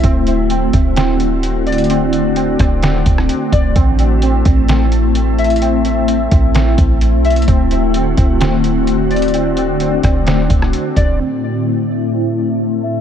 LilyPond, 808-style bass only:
\new Staff \with { instrumentName = "808-style bass" } { \clef bass \time 4/4 \key a \dorian \tempo 4 = 129 d,,4. d,,2~ d,,8~ | d,,4. d,,4 d,,8 r8 d,,8 | a,,4. a,,2~ a,,8~ | a,,4. a,,4 a,,8. b,,8. |
d,,4. d,,2~ d,,8~ | d,,4. d,,4 d,,8 r8 d,,8 | r1 | }